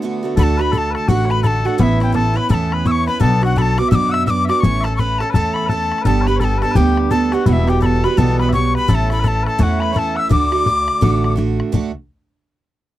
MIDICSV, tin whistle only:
0, 0, Header, 1, 2, 480
1, 0, Start_track
1, 0, Key_signature, 2, "major"
1, 0, Tempo, 355030
1, 504, Time_signature, 4, 2, 24, 8
1, 17549, End_track
2, 0, Start_track
2, 0, Title_t, "Tin whistle"
2, 0, Program_c, 0, 75
2, 525, Note_on_c, 0, 83, 90
2, 583, Note_on_c, 0, 81, 98
2, 596, Note_off_c, 0, 83, 0
2, 827, Note_on_c, 0, 83, 88
2, 848, Note_off_c, 0, 81, 0
2, 1002, Note_off_c, 0, 83, 0
2, 1002, Note_on_c, 0, 83, 82
2, 1053, Note_on_c, 0, 81, 89
2, 1066, Note_off_c, 0, 83, 0
2, 1283, Note_off_c, 0, 81, 0
2, 1291, Note_on_c, 0, 81, 86
2, 1470, Note_on_c, 0, 78, 96
2, 1490, Note_off_c, 0, 81, 0
2, 1772, Note_on_c, 0, 83, 89
2, 1792, Note_off_c, 0, 78, 0
2, 1931, Note_off_c, 0, 83, 0
2, 1939, Note_on_c, 0, 83, 84
2, 1983, Note_on_c, 0, 81, 92
2, 1996, Note_off_c, 0, 83, 0
2, 2244, Note_on_c, 0, 78, 91
2, 2265, Note_off_c, 0, 81, 0
2, 2415, Note_off_c, 0, 78, 0
2, 2423, Note_on_c, 0, 78, 81
2, 2473, Note_on_c, 0, 76, 88
2, 2486, Note_off_c, 0, 78, 0
2, 2697, Note_off_c, 0, 76, 0
2, 2742, Note_on_c, 0, 79, 80
2, 2902, Note_off_c, 0, 79, 0
2, 2909, Note_on_c, 0, 81, 92
2, 3194, Note_on_c, 0, 83, 103
2, 3214, Note_off_c, 0, 81, 0
2, 3380, Note_off_c, 0, 83, 0
2, 3391, Note_on_c, 0, 83, 89
2, 3435, Note_on_c, 0, 81, 96
2, 3449, Note_off_c, 0, 83, 0
2, 3696, Note_on_c, 0, 83, 88
2, 3717, Note_off_c, 0, 81, 0
2, 3879, Note_on_c, 0, 88, 90
2, 3899, Note_off_c, 0, 83, 0
2, 3939, Note_on_c, 0, 85, 98
2, 3953, Note_off_c, 0, 88, 0
2, 4155, Note_off_c, 0, 85, 0
2, 4163, Note_on_c, 0, 83, 96
2, 4331, Note_off_c, 0, 83, 0
2, 4354, Note_on_c, 0, 81, 100
2, 4621, Note_off_c, 0, 81, 0
2, 4665, Note_on_c, 0, 78, 93
2, 4839, Note_on_c, 0, 83, 86
2, 4860, Note_off_c, 0, 78, 0
2, 4890, Note_on_c, 0, 81, 94
2, 4904, Note_off_c, 0, 83, 0
2, 5114, Note_on_c, 0, 86, 105
2, 5134, Note_off_c, 0, 81, 0
2, 5282, Note_off_c, 0, 86, 0
2, 5291, Note_on_c, 0, 88, 97
2, 5344, Note_on_c, 0, 86, 106
2, 5357, Note_off_c, 0, 88, 0
2, 5564, Note_on_c, 0, 88, 98
2, 5584, Note_off_c, 0, 86, 0
2, 5757, Note_off_c, 0, 88, 0
2, 5765, Note_on_c, 0, 88, 95
2, 5817, Note_on_c, 0, 86, 103
2, 5830, Note_off_c, 0, 88, 0
2, 6045, Note_off_c, 0, 86, 0
2, 6064, Note_on_c, 0, 86, 104
2, 6222, Note_on_c, 0, 85, 108
2, 6242, Note_off_c, 0, 86, 0
2, 6544, Note_on_c, 0, 81, 96
2, 6564, Note_off_c, 0, 85, 0
2, 6705, Note_off_c, 0, 81, 0
2, 6713, Note_on_c, 0, 85, 87
2, 6757, Note_on_c, 0, 83, 95
2, 6770, Note_off_c, 0, 85, 0
2, 7011, Note_on_c, 0, 81, 96
2, 7031, Note_off_c, 0, 83, 0
2, 7193, Note_off_c, 0, 81, 0
2, 7201, Note_on_c, 0, 81, 95
2, 7488, Note_on_c, 0, 83, 91
2, 7508, Note_off_c, 0, 81, 0
2, 7689, Note_on_c, 0, 81, 85
2, 7709, Note_off_c, 0, 83, 0
2, 8172, Note_off_c, 0, 81, 0
2, 8198, Note_on_c, 0, 81, 104
2, 8480, Note_on_c, 0, 83, 99
2, 8501, Note_off_c, 0, 81, 0
2, 8651, Note_off_c, 0, 83, 0
2, 8659, Note_on_c, 0, 83, 77
2, 8712, Note_on_c, 0, 81, 84
2, 8725, Note_off_c, 0, 83, 0
2, 8931, Note_off_c, 0, 81, 0
2, 8953, Note_on_c, 0, 81, 91
2, 9140, Note_on_c, 0, 79, 97
2, 9160, Note_off_c, 0, 81, 0
2, 9432, Note_off_c, 0, 79, 0
2, 9610, Note_on_c, 0, 81, 95
2, 9920, Note_on_c, 0, 78, 86
2, 9940, Note_off_c, 0, 81, 0
2, 10098, Note_off_c, 0, 78, 0
2, 10115, Note_on_c, 0, 78, 83
2, 10176, Note_on_c, 0, 76, 90
2, 10190, Note_off_c, 0, 78, 0
2, 10403, Note_on_c, 0, 79, 85
2, 10423, Note_off_c, 0, 76, 0
2, 10564, Note_off_c, 0, 79, 0
2, 10572, Note_on_c, 0, 83, 81
2, 10624, Note_on_c, 0, 81, 88
2, 10638, Note_off_c, 0, 83, 0
2, 10870, Note_on_c, 0, 83, 98
2, 10890, Note_off_c, 0, 81, 0
2, 11055, Note_on_c, 0, 81, 98
2, 11075, Note_off_c, 0, 83, 0
2, 11349, Note_off_c, 0, 81, 0
2, 11359, Note_on_c, 0, 83, 85
2, 11526, Note_off_c, 0, 83, 0
2, 11545, Note_on_c, 0, 85, 97
2, 11813, Note_off_c, 0, 85, 0
2, 11849, Note_on_c, 0, 83, 94
2, 12043, Note_off_c, 0, 83, 0
2, 12043, Note_on_c, 0, 83, 85
2, 12099, Note_on_c, 0, 81, 93
2, 12113, Note_off_c, 0, 83, 0
2, 12323, Note_off_c, 0, 81, 0
2, 12333, Note_on_c, 0, 83, 88
2, 12499, Note_off_c, 0, 83, 0
2, 12499, Note_on_c, 0, 83, 76
2, 12544, Note_on_c, 0, 81, 82
2, 12558, Note_off_c, 0, 83, 0
2, 12791, Note_off_c, 0, 81, 0
2, 12804, Note_on_c, 0, 81, 89
2, 12971, Note_off_c, 0, 81, 0
2, 12971, Note_on_c, 0, 81, 83
2, 13020, Note_on_c, 0, 78, 90
2, 13033, Note_off_c, 0, 81, 0
2, 13251, Note_on_c, 0, 83, 89
2, 13271, Note_off_c, 0, 78, 0
2, 13439, Note_off_c, 0, 83, 0
2, 13439, Note_on_c, 0, 83, 82
2, 13503, Note_on_c, 0, 81, 89
2, 13517, Note_off_c, 0, 83, 0
2, 13743, Note_on_c, 0, 88, 92
2, 13763, Note_off_c, 0, 81, 0
2, 13931, Note_off_c, 0, 88, 0
2, 13946, Note_on_c, 0, 86, 103
2, 15328, Note_off_c, 0, 86, 0
2, 17549, End_track
0, 0, End_of_file